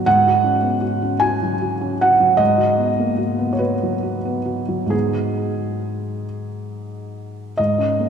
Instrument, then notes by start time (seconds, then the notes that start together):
felt piano
0.06 G#2 F#5
0.27 F#4
0.44 C#4
0.62 B3
0.81 F#4
1.02 C#4
1.20 F#4 G#5
1.43 F#3
1.62 F#4
1.81 C#4
2.01 F#4 F#5
2.20 F#3
2.37 G#2 D#5
2.57 F#4
2.78 B3
2.99 A#3
3.17 F#4
3.38 B3
3.53 C#5
3.58 F#4 B4
3.83 F#3
4.03 F#4
4.25 B3
4.45 F#4
4.68 F#3
4.86 G#2 F#3 B3
4.90 D#4 G#4
7.57 G#2 D#5
7.78 C#4
8.00 A#3